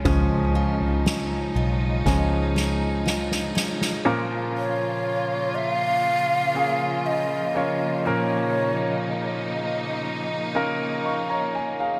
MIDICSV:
0, 0, Header, 1, 7, 480
1, 0, Start_track
1, 0, Tempo, 1000000
1, 25, Time_signature, 4, 2, 24, 8
1, 5759, End_track
2, 0, Start_track
2, 0, Title_t, "Shakuhachi"
2, 0, Program_c, 0, 77
2, 2195, Note_on_c, 0, 73, 97
2, 2667, Note_on_c, 0, 76, 117
2, 2674, Note_off_c, 0, 73, 0
2, 2739, Note_off_c, 0, 76, 0
2, 2739, Note_on_c, 0, 77, 117
2, 3389, Note_on_c, 0, 75, 92
2, 3397, Note_off_c, 0, 77, 0
2, 3871, Note_on_c, 0, 73, 92
2, 3878, Note_off_c, 0, 75, 0
2, 4348, Note_off_c, 0, 73, 0
2, 5759, End_track
3, 0, Start_track
3, 0, Title_t, "Steel-string acoustic guitar"
3, 0, Program_c, 1, 25
3, 0, Note_on_c, 1, 56, 60
3, 0, Note_on_c, 1, 61, 56
3, 0, Note_on_c, 1, 65, 57
3, 25, Note_on_c, 1, 49, 70
3, 28, Note_on_c, 1, 68, 59
3, 263, Note_off_c, 1, 65, 0
3, 265, Note_on_c, 1, 65, 57
3, 507, Note_off_c, 1, 61, 0
3, 509, Note_on_c, 1, 61, 56
3, 748, Note_off_c, 1, 65, 0
3, 750, Note_on_c, 1, 65, 52
3, 985, Note_off_c, 1, 56, 0
3, 991, Note_on_c, 1, 56, 68
3, 1224, Note_off_c, 1, 68, 0
3, 1229, Note_on_c, 1, 68, 62
3, 1465, Note_off_c, 1, 65, 0
3, 1467, Note_on_c, 1, 65, 53
3, 1703, Note_off_c, 1, 61, 0
3, 1705, Note_on_c, 1, 61, 55
3, 1945, Note_off_c, 1, 49, 0
3, 1996, Note_off_c, 1, 56, 0
3, 1996, Note_off_c, 1, 68, 0
3, 2233, Note_off_c, 1, 61, 0
3, 2234, Note_off_c, 1, 65, 0
3, 5759, End_track
4, 0, Start_track
4, 0, Title_t, "Grand piano"
4, 0, Program_c, 2, 0
4, 0, Control_c, 2, 64, 127
4, 23, Note_on_c, 2, 53, 56
4, 26, Note_on_c, 2, 56, 49
4, 29, Note_on_c, 2, 61, 58
4, 725, Note_off_c, 2, 53, 0
4, 727, Note_off_c, 2, 56, 0
4, 728, Note_off_c, 2, 61, 0
4, 987, Note_on_c, 2, 53, 42
4, 988, Note_on_c, 2, 56, 43
4, 990, Note_on_c, 2, 61, 47
4, 1207, Note_off_c, 2, 53, 0
4, 1208, Note_off_c, 2, 56, 0
4, 1208, Note_off_c, 2, 61, 0
4, 1944, Note_on_c, 2, 58, 81
4, 1945, Note_on_c, 2, 61, 76
4, 1946, Note_on_c, 2, 53, 78
4, 1947, Note_on_c, 2, 46, 78
4, 1949, Note_on_c, 2, 65, 78
4, 1951, Control_c, 2, 64, 0
4, 1952, Note_on_c, 2, 70, 89
4, 2024, Control_c, 2, 64, 127
4, 2647, Note_off_c, 2, 46, 0
4, 2647, Note_off_c, 2, 53, 0
4, 2857, Note_off_c, 2, 58, 0
4, 2857, Note_off_c, 2, 61, 0
4, 2859, Note_off_c, 2, 65, 0
4, 2861, Note_off_c, 2, 70, 0
4, 3142, Note_on_c, 2, 58, 64
4, 3145, Note_on_c, 2, 61, 62
4, 3147, Note_on_c, 2, 65, 61
4, 3151, Note_on_c, 2, 68, 74
4, 3600, Note_off_c, 2, 58, 0
4, 3601, Note_off_c, 2, 61, 0
4, 3602, Note_off_c, 2, 65, 0
4, 3604, Note_off_c, 2, 68, 0
4, 3623, Note_on_c, 2, 58, 73
4, 3628, Note_on_c, 2, 61, 68
4, 3629, Note_on_c, 2, 65, 65
4, 3632, Note_on_c, 2, 73, 74
4, 3852, Note_off_c, 2, 58, 0
4, 3855, Note_off_c, 2, 61, 0
4, 3856, Note_off_c, 2, 65, 0
4, 3857, Note_off_c, 2, 73, 0
4, 3865, Note_on_c, 2, 58, 75
4, 3868, Note_on_c, 2, 53, 59
4, 3869, Note_on_c, 2, 46, 64
4, 3869, Note_on_c, 2, 61, 69
4, 3869, Note_on_c, 2, 65, 67
4, 3873, Note_on_c, 2, 70, 81
4, 4567, Note_off_c, 2, 53, 0
4, 4568, Note_off_c, 2, 46, 0
4, 4777, Note_off_c, 2, 58, 0
4, 4779, Note_off_c, 2, 61, 0
4, 4779, Note_off_c, 2, 65, 0
4, 4781, Note_off_c, 2, 70, 0
4, 5064, Note_on_c, 2, 58, 80
4, 5065, Note_on_c, 2, 61, 71
4, 5067, Note_on_c, 2, 65, 76
4, 5070, Note_on_c, 2, 70, 91
4, 5307, Note_on_c, 2, 85, 62
4, 5308, Note_off_c, 2, 70, 0
4, 5312, Note_on_c, 2, 77, 53
4, 5420, Note_off_c, 2, 85, 0
4, 5423, Note_off_c, 2, 77, 0
4, 5424, Note_on_c, 2, 82, 70
4, 5427, Note_on_c, 2, 73, 65
4, 5521, Note_off_c, 2, 58, 0
4, 5521, Note_off_c, 2, 61, 0
4, 5522, Note_off_c, 2, 65, 0
4, 5539, Note_off_c, 2, 82, 0
4, 5540, Note_off_c, 2, 73, 0
4, 5545, Note_on_c, 2, 80, 73
4, 5659, Note_off_c, 2, 80, 0
4, 5665, Note_on_c, 2, 77, 67
4, 5668, Note_on_c, 2, 68, 51
4, 5759, Note_off_c, 2, 68, 0
4, 5759, Note_off_c, 2, 77, 0
4, 5759, End_track
5, 0, Start_track
5, 0, Title_t, "String section"
5, 0, Program_c, 3, 48
5, 0, Note_on_c, 3, 49, 67
5, 0, Note_on_c, 3, 53, 57
5, 0, Note_on_c, 3, 56, 59
5, 33, Note_on_c, 3, 63, 81
5, 1925, Note_off_c, 3, 49, 0
5, 1925, Note_off_c, 3, 56, 0
5, 1926, Note_off_c, 3, 53, 0
5, 1930, Note_off_c, 3, 63, 0
5, 1949, Note_on_c, 3, 53, 68
5, 1950, Note_on_c, 3, 65, 85
5, 1952, Note_on_c, 3, 49, 76
5, 1954, Note_on_c, 3, 58, 70
5, 3849, Note_off_c, 3, 65, 0
5, 3872, Note_on_c, 3, 63, 86
5, 5759, Note_off_c, 3, 49, 0
5, 5759, Note_off_c, 3, 53, 0
5, 5759, Note_off_c, 3, 58, 0
5, 5759, Note_off_c, 3, 63, 0
5, 5759, End_track
6, 0, Start_track
6, 0, Title_t, "Fingered electric bass"
6, 0, Program_c, 4, 33
6, 27, Note_on_c, 4, 37, 104
6, 727, Note_off_c, 4, 37, 0
6, 747, Note_on_c, 4, 35, 85
6, 970, Note_off_c, 4, 35, 0
6, 988, Note_on_c, 4, 37, 91
6, 1687, Note_off_c, 4, 37, 0
6, 5759, End_track
7, 0, Start_track
7, 0, Title_t, "Drums"
7, 24, Note_on_c, 9, 43, 105
7, 26, Note_on_c, 9, 36, 107
7, 72, Note_off_c, 9, 43, 0
7, 74, Note_off_c, 9, 36, 0
7, 386, Note_on_c, 9, 43, 57
7, 434, Note_off_c, 9, 43, 0
7, 511, Note_on_c, 9, 38, 94
7, 559, Note_off_c, 9, 38, 0
7, 988, Note_on_c, 9, 36, 71
7, 991, Note_on_c, 9, 38, 49
7, 1036, Note_off_c, 9, 36, 0
7, 1039, Note_off_c, 9, 38, 0
7, 1231, Note_on_c, 9, 38, 62
7, 1279, Note_off_c, 9, 38, 0
7, 1473, Note_on_c, 9, 38, 81
7, 1521, Note_off_c, 9, 38, 0
7, 1592, Note_on_c, 9, 38, 73
7, 1640, Note_off_c, 9, 38, 0
7, 1712, Note_on_c, 9, 38, 94
7, 1760, Note_off_c, 9, 38, 0
7, 1831, Note_on_c, 9, 38, 79
7, 1879, Note_off_c, 9, 38, 0
7, 5759, End_track
0, 0, End_of_file